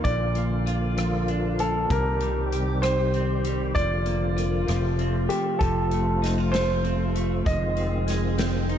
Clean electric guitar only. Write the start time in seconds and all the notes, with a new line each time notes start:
Already playing: A#3 D#4 F4
0.05 A#2
0.36 A#3
0.66 F4
0.97 F3
1.28 D4
1.60 A#3
1.91 C3
2.21 G3
2.52 G4
2.83 D#3
3.14 C4
3.45 G3
3.75 F3
4.06 A#3
4.37 F4
4.67 F3
4.99 C4
5.30 A3
5.60 F3
5.92 A3
6.22 D#4
6.38 F4
6.53 A3
6.84 C4
7.15 A3
7.46 F3
7.77 C4
8.07 G#4
8.38 C4
8.69 D#4